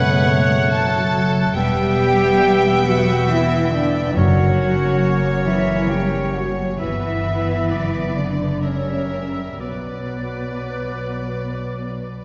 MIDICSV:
0, 0, Header, 1, 12, 480
1, 0, Start_track
1, 0, Key_signature, 2, "minor"
1, 0, Tempo, 860832
1, 864, Time_signature, 3, 2, 24, 8
1, 1344, Tempo, 877193
1, 3744, Tempo, 917431
1, 4704, Tempo, 983607
1, 6469, End_track
2, 0, Start_track
2, 0, Title_t, "Flute"
2, 0, Program_c, 0, 73
2, 0, Note_on_c, 0, 71, 84
2, 365, Note_off_c, 0, 71, 0
2, 866, Note_on_c, 0, 79, 113
2, 1592, Note_on_c, 0, 78, 91
2, 1601, Note_off_c, 0, 79, 0
2, 1830, Note_on_c, 0, 76, 80
2, 1838, Note_off_c, 0, 78, 0
2, 2068, Note_on_c, 0, 74, 73
2, 2076, Note_off_c, 0, 76, 0
2, 2302, Note_on_c, 0, 78, 89
2, 2310, Note_off_c, 0, 74, 0
2, 2870, Note_off_c, 0, 78, 0
2, 3015, Note_on_c, 0, 76, 79
2, 3250, Note_on_c, 0, 79, 73
2, 3258, Note_off_c, 0, 76, 0
2, 3493, Note_on_c, 0, 78, 58
2, 3501, Note_off_c, 0, 79, 0
2, 3738, Note_off_c, 0, 78, 0
2, 3742, Note_on_c, 0, 76, 78
2, 4465, Note_on_c, 0, 74, 57
2, 4473, Note_off_c, 0, 76, 0
2, 4709, Note_on_c, 0, 73, 54
2, 4716, Note_off_c, 0, 74, 0
2, 5030, Note_off_c, 0, 73, 0
2, 5188, Note_on_c, 0, 71, 44
2, 6367, Note_off_c, 0, 71, 0
2, 6469, End_track
3, 0, Start_track
3, 0, Title_t, "Oboe"
3, 0, Program_c, 1, 68
3, 0, Note_on_c, 1, 78, 92
3, 864, Note_off_c, 1, 78, 0
3, 867, Note_on_c, 1, 76, 72
3, 2279, Note_off_c, 1, 76, 0
3, 2301, Note_on_c, 1, 73, 63
3, 3650, Note_off_c, 1, 73, 0
3, 3743, Note_on_c, 1, 76, 49
3, 4217, Note_on_c, 1, 74, 50
3, 4225, Note_off_c, 1, 76, 0
3, 4551, Note_off_c, 1, 74, 0
3, 4703, Note_on_c, 1, 76, 42
3, 5180, Note_on_c, 1, 74, 41
3, 5187, Note_off_c, 1, 76, 0
3, 6455, Note_off_c, 1, 74, 0
3, 6469, End_track
4, 0, Start_track
4, 0, Title_t, "Violin section"
4, 0, Program_c, 2, 48
4, 0, Note_on_c, 2, 78, 86
4, 387, Note_on_c, 2, 81, 78
4, 388, Note_off_c, 2, 78, 0
4, 856, Note_off_c, 2, 81, 0
4, 864, Note_on_c, 2, 79, 72
4, 2278, Note_off_c, 2, 79, 0
4, 2309, Note_on_c, 2, 73, 62
4, 3725, Note_off_c, 2, 73, 0
4, 3750, Note_on_c, 2, 76, 50
4, 4203, Note_off_c, 2, 76, 0
4, 4224, Note_on_c, 2, 74, 44
4, 4683, Note_off_c, 2, 74, 0
4, 4707, Note_on_c, 2, 76, 42
4, 5159, Note_off_c, 2, 76, 0
4, 5185, Note_on_c, 2, 74, 39
4, 6469, Note_off_c, 2, 74, 0
4, 6469, End_track
5, 0, Start_track
5, 0, Title_t, "Clarinet"
5, 0, Program_c, 3, 71
5, 0, Note_on_c, 3, 73, 105
5, 843, Note_off_c, 3, 73, 0
5, 871, Note_on_c, 3, 71, 89
5, 2310, Note_on_c, 3, 70, 73
5, 2319, Note_off_c, 3, 71, 0
5, 3656, Note_off_c, 3, 70, 0
5, 3749, Note_on_c, 3, 71, 63
5, 4539, Note_off_c, 3, 71, 0
5, 4706, Note_on_c, 3, 70, 41
5, 5181, Note_on_c, 3, 71, 46
5, 5188, Note_off_c, 3, 70, 0
5, 6455, Note_off_c, 3, 71, 0
5, 6469, End_track
6, 0, Start_track
6, 0, Title_t, "Violin section"
6, 0, Program_c, 4, 48
6, 0, Note_on_c, 4, 71, 76
6, 143, Note_off_c, 4, 71, 0
6, 158, Note_on_c, 4, 73, 87
6, 391, Note_off_c, 4, 73, 0
6, 392, Note_on_c, 4, 69, 81
6, 859, Note_off_c, 4, 69, 0
6, 873, Note_on_c, 4, 76, 80
6, 2282, Note_off_c, 4, 76, 0
6, 2307, Note_on_c, 4, 73, 73
6, 3725, Note_off_c, 4, 73, 0
6, 3753, Note_on_c, 4, 71, 60
6, 4687, Note_off_c, 4, 71, 0
6, 4707, Note_on_c, 4, 70, 47
6, 5159, Note_off_c, 4, 70, 0
6, 5180, Note_on_c, 4, 71, 41
6, 6469, Note_off_c, 4, 71, 0
6, 6469, End_track
7, 0, Start_track
7, 0, Title_t, "French horn section"
7, 0, Program_c, 5, 60
7, 0, Note_on_c, 5, 59, 93
7, 377, Note_off_c, 5, 59, 0
7, 865, Note_on_c, 5, 67, 123
7, 1565, Note_off_c, 5, 67, 0
7, 1587, Note_on_c, 5, 66, 96
7, 1822, Note_off_c, 5, 66, 0
7, 1835, Note_on_c, 5, 64, 99
7, 2062, Note_on_c, 5, 62, 88
7, 2068, Note_off_c, 5, 64, 0
7, 2298, Note_on_c, 5, 66, 105
7, 2299, Note_off_c, 5, 62, 0
7, 3013, Note_off_c, 5, 66, 0
7, 3017, Note_on_c, 5, 64, 79
7, 3249, Note_off_c, 5, 64, 0
7, 3249, Note_on_c, 5, 67, 92
7, 3491, Note_on_c, 5, 66, 71
7, 3493, Note_off_c, 5, 67, 0
7, 3732, Note_on_c, 5, 64, 82
7, 3741, Note_off_c, 5, 66, 0
7, 4440, Note_off_c, 5, 64, 0
7, 4460, Note_on_c, 5, 62, 65
7, 4703, Note_off_c, 5, 62, 0
7, 4707, Note_on_c, 5, 61, 65
7, 5099, Note_off_c, 5, 61, 0
7, 5182, Note_on_c, 5, 59, 57
7, 6364, Note_off_c, 5, 59, 0
7, 6469, End_track
8, 0, Start_track
8, 0, Title_t, "Bassoon"
8, 0, Program_c, 6, 70
8, 0, Note_on_c, 6, 57, 90
8, 868, Note_off_c, 6, 57, 0
8, 872, Note_on_c, 6, 59, 81
8, 2210, Note_off_c, 6, 59, 0
8, 2303, Note_on_c, 6, 61, 69
8, 3742, Note_on_c, 6, 59, 58
8, 3750, Note_off_c, 6, 61, 0
8, 4552, Note_off_c, 6, 59, 0
8, 4705, Note_on_c, 6, 55, 44
8, 5178, Note_on_c, 6, 54, 45
8, 5186, Note_off_c, 6, 55, 0
8, 6454, Note_off_c, 6, 54, 0
8, 6469, End_track
9, 0, Start_track
9, 0, Title_t, "Viola section"
9, 0, Program_c, 7, 48
9, 0, Note_on_c, 7, 56, 75
9, 387, Note_off_c, 7, 56, 0
9, 393, Note_on_c, 7, 54, 70
9, 859, Note_off_c, 7, 54, 0
9, 871, Note_on_c, 7, 59, 76
9, 2281, Note_off_c, 7, 59, 0
9, 2303, Note_on_c, 7, 58, 64
9, 3722, Note_off_c, 7, 58, 0
9, 3747, Note_on_c, 7, 59, 55
9, 4684, Note_off_c, 7, 59, 0
9, 4702, Note_on_c, 7, 55, 38
9, 5157, Note_off_c, 7, 55, 0
9, 5177, Note_on_c, 7, 54, 42
9, 6469, Note_off_c, 7, 54, 0
9, 6469, End_track
10, 0, Start_track
10, 0, Title_t, "Cello section"
10, 0, Program_c, 8, 48
10, 0, Note_on_c, 8, 47, 77
10, 385, Note_off_c, 8, 47, 0
10, 866, Note_on_c, 8, 55, 99
10, 1565, Note_off_c, 8, 55, 0
10, 1585, Note_on_c, 8, 54, 83
10, 1823, Note_on_c, 8, 52, 80
10, 1826, Note_off_c, 8, 54, 0
10, 2062, Note_off_c, 8, 52, 0
10, 2065, Note_on_c, 8, 50, 73
10, 2300, Note_off_c, 8, 50, 0
10, 2300, Note_on_c, 8, 54, 81
10, 3000, Note_off_c, 8, 54, 0
10, 3018, Note_on_c, 8, 52, 70
10, 3254, Note_off_c, 8, 52, 0
10, 3256, Note_on_c, 8, 55, 74
10, 3496, Note_off_c, 8, 55, 0
10, 3500, Note_on_c, 8, 54, 61
10, 3745, Note_off_c, 8, 54, 0
10, 3749, Note_on_c, 8, 52, 71
10, 4448, Note_off_c, 8, 52, 0
10, 4467, Note_on_c, 8, 50, 56
10, 4705, Note_on_c, 8, 49, 51
10, 4706, Note_off_c, 8, 50, 0
10, 5178, Note_off_c, 8, 49, 0
10, 5180, Note_on_c, 8, 47, 44
10, 6363, Note_off_c, 8, 47, 0
10, 6469, End_track
11, 0, Start_track
11, 0, Title_t, "Timpani"
11, 0, Program_c, 10, 47
11, 2301, Note_on_c, 10, 42, 70
11, 2993, Note_off_c, 10, 42, 0
11, 6469, End_track
12, 0, Start_track
12, 0, Title_t, "Double bass section"
12, 0, Program_c, 11, 48
12, 0, Note_on_c, 11, 30, 90
12, 841, Note_off_c, 11, 30, 0
12, 863, Note_on_c, 11, 28, 85
12, 2277, Note_off_c, 11, 28, 0
12, 2301, Note_on_c, 11, 30, 72
12, 3721, Note_off_c, 11, 30, 0
12, 3744, Note_on_c, 11, 31, 61
12, 4220, Note_on_c, 11, 30, 52
12, 4221, Note_off_c, 11, 31, 0
12, 5176, Note_off_c, 11, 30, 0
12, 5177, Note_on_c, 11, 35, 40
12, 6469, Note_off_c, 11, 35, 0
12, 6469, End_track
0, 0, End_of_file